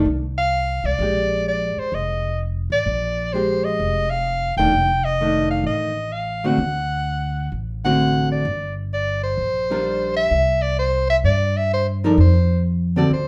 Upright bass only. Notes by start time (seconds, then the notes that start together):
0.05 C2
0.84 C2
0.99 A#1
1.77 muted upright bass stroke
1.92 F1
2.70 A1
2.86 A#1
3.79 F1
4.57 E1
4.71 F1
5.64 A1
6.58 D2
7.52 A1
8.45 G1
9.37 A#1
10.31 C2
11.24 G2
12.18 F2
13.10 D2